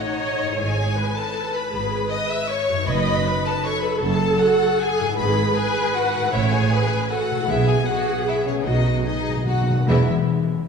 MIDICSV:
0, 0, Header, 1, 8, 480
1, 0, Start_track
1, 0, Key_signature, 4, "major"
1, 0, Tempo, 375235
1, 764, Time_signature, 3, 2, 24, 8
1, 2685, Tempo, 384862
1, 9885, Tempo, 392413
1, 11325, Tempo, 415800
1, 13211, End_track
2, 0, Start_track
2, 0, Title_t, "Violin section"
2, 0, Program_c, 0, 48
2, 35, Note_on_c, 0, 75, 118
2, 759, Note_off_c, 0, 75, 0
2, 761, Note_on_c, 0, 80, 127
2, 1477, Note_off_c, 0, 80, 0
2, 1493, Note_on_c, 0, 81, 127
2, 1972, Note_on_c, 0, 83, 110
2, 1975, Note_off_c, 0, 81, 0
2, 2683, Note_off_c, 0, 83, 0
2, 2689, Note_on_c, 0, 87, 112
2, 2928, Note_off_c, 0, 87, 0
2, 2945, Note_on_c, 0, 88, 117
2, 3177, Note_on_c, 0, 85, 115
2, 3183, Note_off_c, 0, 88, 0
2, 3644, Note_off_c, 0, 85, 0
2, 3655, Note_on_c, 0, 83, 127
2, 4370, Note_off_c, 0, 83, 0
2, 4371, Note_on_c, 0, 81, 126
2, 4607, Note_on_c, 0, 85, 127
2, 4608, Note_off_c, 0, 81, 0
2, 4842, Note_off_c, 0, 85, 0
2, 4850, Note_on_c, 0, 83, 102
2, 5075, Note_off_c, 0, 83, 0
2, 5076, Note_on_c, 0, 81, 127
2, 5550, Note_on_c, 0, 78, 127
2, 5554, Note_off_c, 0, 81, 0
2, 6049, Note_on_c, 0, 80, 127
2, 6050, Note_off_c, 0, 78, 0
2, 6513, Note_on_c, 0, 83, 127
2, 6523, Note_off_c, 0, 80, 0
2, 6986, Note_off_c, 0, 83, 0
2, 6991, Note_on_c, 0, 80, 127
2, 7491, Note_off_c, 0, 80, 0
2, 7492, Note_on_c, 0, 78, 127
2, 7954, Note_on_c, 0, 76, 127
2, 7961, Note_off_c, 0, 78, 0
2, 8178, Note_on_c, 0, 80, 127
2, 8190, Note_off_c, 0, 76, 0
2, 8928, Note_off_c, 0, 80, 0
2, 8930, Note_on_c, 0, 78, 126
2, 9399, Note_off_c, 0, 78, 0
2, 9409, Note_on_c, 0, 76, 127
2, 9638, Note_off_c, 0, 76, 0
2, 9641, Note_on_c, 0, 80, 127
2, 9884, Note_on_c, 0, 78, 115
2, 9887, Note_off_c, 0, 80, 0
2, 10378, Note_off_c, 0, 78, 0
2, 10384, Note_on_c, 0, 76, 111
2, 10615, Note_off_c, 0, 76, 0
2, 10615, Note_on_c, 0, 73, 97
2, 10705, Note_off_c, 0, 73, 0
2, 10847, Note_on_c, 0, 75, 118
2, 11313, Note_off_c, 0, 75, 0
2, 11328, Note_on_c, 0, 75, 114
2, 11804, Note_off_c, 0, 75, 0
2, 11822, Note_on_c, 0, 78, 98
2, 12281, Note_off_c, 0, 78, 0
2, 12286, Note_on_c, 0, 76, 102
2, 12538, Note_off_c, 0, 76, 0
2, 13211, End_track
3, 0, Start_track
3, 0, Title_t, "Viola section"
3, 0, Program_c, 1, 48
3, 0, Note_on_c, 1, 73, 108
3, 1241, Note_on_c, 1, 71, 83
3, 1245, Note_off_c, 1, 73, 0
3, 2201, Note_on_c, 1, 68, 96
3, 2204, Note_off_c, 1, 71, 0
3, 2673, Note_off_c, 1, 68, 0
3, 2684, Note_on_c, 1, 71, 89
3, 3176, Note_off_c, 1, 71, 0
3, 3178, Note_on_c, 1, 73, 101
3, 3644, Note_off_c, 1, 73, 0
3, 3649, Note_on_c, 1, 75, 118
3, 4119, Note_off_c, 1, 75, 0
3, 4129, Note_on_c, 1, 71, 101
3, 4611, Note_off_c, 1, 71, 0
3, 4614, Note_on_c, 1, 69, 127
3, 6528, Note_off_c, 1, 69, 0
3, 6532, Note_on_c, 1, 68, 117
3, 6995, Note_off_c, 1, 68, 0
3, 7006, Note_on_c, 1, 71, 122
3, 7947, Note_off_c, 1, 71, 0
3, 7966, Note_on_c, 1, 73, 112
3, 8442, Note_off_c, 1, 73, 0
3, 8442, Note_on_c, 1, 71, 105
3, 8935, Note_on_c, 1, 69, 106
3, 8938, Note_off_c, 1, 71, 0
3, 9398, Note_on_c, 1, 68, 117
3, 9402, Note_off_c, 1, 69, 0
3, 10808, Note_off_c, 1, 68, 0
3, 10849, Note_on_c, 1, 66, 102
3, 11329, Note_off_c, 1, 66, 0
3, 11330, Note_on_c, 1, 68, 88
3, 11815, Note_off_c, 1, 68, 0
3, 11819, Note_on_c, 1, 66, 83
3, 12058, Note_off_c, 1, 66, 0
3, 12292, Note_on_c, 1, 56, 93
3, 12293, Note_on_c, 1, 59, 93
3, 12541, Note_off_c, 1, 56, 0
3, 12542, Note_off_c, 1, 59, 0
3, 13211, End_track
4, 0, Start_track
4, 0, Title_t, "Violin section"
4, 0, Program_c, 2, 48
4, 53, Note_on_c, 2, 63, 96
4, 767, Note_on_c, 2, 68, 102
4, 768, Note_off_c, 2, 63, 0
4, 1480, Note_off_c, 2, 68, 0
4, 1500, Note_on_c, 2, 69, 104
4, 1969, Note_off_c, 2, 69, 0
4, 1980, Note_on_c, 2, 71, 115
4, 2687, Note_off_c, 2, 71, 0
4, 2691, Note_on_c, 2, 75, 127
4, 2934, Note_off_c, 2, 75, 0
4, 2943, Note_on_c, 2, 76, 118
4, 3182, Note_off_c, 2, 76, 0
4, 3190, Note_on_c, 2, 73, 116
4, 3649, Note_on_c, 2, 71, 101
4, 3650, Note_off_c, 2, 73, 0
4, 4352, Note_off_c, 2, 71, 0
4, 4380, Note_on_c, 2, 69, 104
4, 4473, Note_off_c, 2, 69, 0
4, 4615, Note_on_c, 2, 73, 127
4, 4841, Note_off_c, 2, 73, 0
4, 4842, Note_on_c, 2, 71, 108
4, 5063, Note_on_c, 2, 69, 102
4, 5070, Note_off_c, 2, 71, 0
4, 5547, Note_off_c, 2, 69, 0
4, 5554, Note_on_c, 2, 66, 111
4, 6053, Note_off_c, 2, 66, 0
4, 6056, Note_on_c, 2, 68, 124
4, 6526, Note_off_c, 2, 68, 0
4, 6529, Note_on_c, 2, 71, 118
4, 6994, Note_off_c, 2, 71, 0
4, 6998, Note_on_c, 2, 68, 127
4, 7495, Note_off_c, 2, 68, 0
4, 7495, Note_on_c, 2, 66, 118
4, 7963, Note_off_c, 2, 66, 0
4, 7973, Note_on_c, 2, 64, 121
4, 8195, Note_off_c, 2, 64, 0
4, 8199, Note_on_c, 2, 68, 123
4, 8935, Note_on_c, 2, 66, 102
4, 8938, Note_off_c, 2, 68, 0
4, 9393, Note_off_c, 2, 66, 0
4, 9399, Note_on_c, 2, 64, 117
4, 9633, Note_off_c, 2, 64, 0
4, 9643, Note_on_c, 2, 68, 106
4, 9741, Note_off_c, 2, 68, 0
4, 9884, Note_on_c, 2, 66, 116
4, 10368, Note_off_c, 2, 66, 0
4, 10381, Note_on_c, 2, 64, 113
4, 10474, Note_off_c, 2, 64, 0
4, 10613, Note_on_c, 2, 61, 96
4, 10831, Note_on_c, 2, 63, 105
4, 10835, Note_off_c, 2, 61, 0
4, 11313, Note_off_c, 2, 63, 0
4, 11328, Note_on_c, 2, 63, 113
4, 11804, Note_off_c, 2, 63, 0
4, 11814, Note_on_c, 2, 66, 95
4, 12277, Note_off_c, 2, 66, 0
4, 12287, Note_on_c, 2, 64, 97
4, 12539, Note_off_c, 2, 64, 0
4, 13211, End_track
5, 0, Start_track
5, 0, Title_t, "Harp"
5, 0, Program_c, 3, 46
5, 0, Note_on_c, 3, 45, 81
5, 0, Note_on_c, 3, 59, 67
5, 0, Note_on_c, 3, 63, 62
5, 0, Note_on_c, 3, 71, 65
5, 539, Note_on_c, 3, 44, 78
5, 582, Note_off_c, 3, 59, 0
5, 598, Note_on_c, 3, 59, 73
5, 653, Note_on_c, 3, 64, 69
5, 670, Note_off_c, 3, 45, 0
5, 695, Note_off_c, 3, 71, 0
5, 710, Note_on_c, 3, 71, 71
5, 728, Note_off_c, 3, 63, 0
5, 3420, Note_on_c, 3, 42, 94
5, 3463, Note_off_c, 3, 59, 0
5, 3478, Note_on_c, 3, 59, 72
5, 3530, Note_on_c, 3, 63, 70
5, 3551, Note_off_c, 3, 44, 0
5, 3572, Note_off_c, 3, 71, 0
5, 3587, Note_on_c, 3, 71, 76
5, 3607, Note_off_c, 3, 64, 0
5, 6304, Note_on_c, 3, 44, 96
5, 6342, Note_off_c, 3, 59, 0
5, 6357, Note_on_c, 3, 59, 83
5, 6412, Note_on_c, 3, 64, 80
5, 6430, Note_off_c, 3, 42, 0
5, 6456, Note_off_c, 3, 71, 0
5, 6471, Note_on_c, 3, 71, 78
5, 6485, Note_off_c, 3, 63, 0
5, 7740, Note_on_c, 3, 45, 90
5, 7795, Note_on_c, 3, 57, 75
5, 7838, Note_off_c, 3, 64, 0
5, 7853, Note_on_c, 3, 64, 84
5, 7872, Note_off_c, 3, 44, 0
5, 7899, Note_off_c, 3, 59, 0
5, 7908, Note_on_c, 3, 73, 81
5, 7955, Note_off_c, 3, 71, 0
5, 9180, Note_on_c, 3, 47, 102
5, 9235, Note_on_c, 3, 56, 86
5, 9275, Note_off_c, 3, 64, 0
5, 9290, Note_on_c, 3, 64, 81
5, 9309, Note_off_c, 3, 45, 0
5, 9336, Note_off_c, 3, 57, 0
5, 9349, Note_on_c, 3, 71, 81
5, 9393, Note_off_c, 3, 73, 0
5, 10609, Note_off_c, 3, 47, 0
5, 10624, Note_on_c, 3, 47, 90
5, 10681, Note_on_c, 3, 57, 73
5, 10733, Note_on_c, 3, 66, 66
5, 10771, Note_off_c, 3, 71, 0
5, 10775, Note_off_c, 3, 56, 0
5, 10786, Note_on_c, 3, 71, 68
5, 10802, Note_off_c, 3, 64, 0
5, 12201, Note_off_c, 3, 47, 0
5, 12228, Note_off_c, 3, 57, 0
5, 12253, Note_off_c, 3, 66, 0
5, 12259, Note_on_c, 3, 52, 95
5, 12278, Note_on_c, 3, 56, 88
5, 12281, Note_off_c, 3, 71, 0
5, 12295, Note_on_c, 3, 64, 95
5, 12313, Note_on_c, 3, 71, 89
5, 12331, Note_on_c, 3, 76, 85
5, 12543, Note_off_c, 3, 52, 0
5, 12543, Note_off_c, 3, 56, 0
5, 12543, Note_off_c, 3, 64, 0
5, 12543, Note_off_c, 3, 71, 0
5, 12543, Note_off_c, 3, 76, 0
5, 13211, End_track
6, 0, Start_track
6, 0, Title_t, "Timpani"
6, 0, Program_c, 4, 47
6, 9397, Note_on_c, 4, 47, 108
6, 10083, Note_off_c, 4, 47, 0
6, 10843, Note_on_c, 4, 47, 49
6, 10913, Note_off_c, 4, 47, 0
6, 11022, Note_on_c, 4, 47, 56
6, 11109, Note_off_c, 4, 47, 0
6, 11123, Note_on_c, 4, 47, 57
6, 11200, Note_off_c, 4, 47, 0
6, 11215, Note_on_c, 4, 47, 57
6, 11301, Note_off_c, 4, 47, 0
6, 11316, Note_on_c, 4, 47, 63
6, 11403, Note_off_c, 4, 47, 0
6, 11417, Note_on_c, 4, 47, 63
6, 11494, Note_off_c, 4, 47, 0
6, 11601, Note_on_c, 4, 47, 67
6, 11681, Note_off_c, 4, 47, 0
6, 11695, Note_on_c, 4, 47, 83
6, 11774, Note_off_c, 4, 47, 0
6, 11788, Note_on_c, 4, 47, 83
6, 11866, Note_off_c, 4, 47, 0
6, 11879, Note_on_c, 4, 47, 92
6, 11962, Note_off_c, 4, 47, 0
6, 11975, Note_on_c, 4, 47, 119
6, 12062, Note_off_c, 4, 47, 0
6, 12075, Note_on_c, 4, 47, 105
6, 12152, Note_off_c, 4, 47, 0
6, 12166, Note_on_c, 4, 47, 113
6, 12247, Note_off_c, 4, 47, 0
6, 12291, Note_on_c, 4, 40, 107
6, 12497, Note_off_c, 4, 40, 0
6, 13211, End_track
7, 0, Start_track
7, 0, Title_t, "Cello section"
7, 0, Program_c, 5, 48
7, 758, Note_on_c, 5, 44, 88
7, 1156, Note_off_c, 5, 44, 0
7, 2213, Note_on_c, 5, 44, 96
7, 2605, Note_off_c, 5, 44, 0
7, 3647, Note_on_c, 5, 42, 97
7, 4036, Note_off_c, 5, 42, 0
7, 5076, Note_on_c, 5, 42, 111
7, 5470, Note_off_c, 5, 42, 0
7, 6523, Note_on_c, 5, 44, 109
7, 6918, Note_off_c, 5, 44, 0
7, 7963, Note_on_c, 5, 45, 99
7, 8357, Note_off_c, 5, 45, 0
7, 9399, Note_on_c, 5, 47, 95
7, 9797, Note_off_c, 5, 47, 0
7, 10847, Note_on_c, 5, 47, 90
7, 11242, Note_off_c, 5, 47, 0
7, 12294, Note_on_c, 5, 40, 99
7, 12542, Note_off_c, 5, 40, 0
7, 13211, End_track
8, 0, Start_track
8, 0, Title_t, "Double bass section"
8, 0, Program_c, 6, 48
8, 764, Note_on_c, 6, 32, 89
8, 1159, Note_off_c, 6, 32, 0
8, 2197, Note_on_c, 6, 32, 95
8, 2597, Note_off_c, 6, 32, 0
8, 3637, Note_on_c, 6, 30, 117
8, 4030, Note_off_c, 6, 30, 0
8, 5071, Note_on_c, 6, 30, 108
8, 5467, Note_off_c, 6, 30, 0
8, 6516, Note_on_c, 6, 32, 101
8, 6914, Note_off_c, 6, 32, 0
8, 7953, Note_on_c, 6, 33, 117
8, 8352, Note_off_c, 6, 33, 0
8, 9398, Note_on_c, 6, 35, 116
8, 9797, Note_off_c, 6, 35, 0
8, 10841, Note_on_c, 6, 35, 107
8, 11239, Note_off_c, 6, 35, 0
8, 12282, Note_on_c, 6, 28, 110
8, 12536, Note_off_c, 6, 28, 0
8, 13211, End_track
0, 0, End_of_file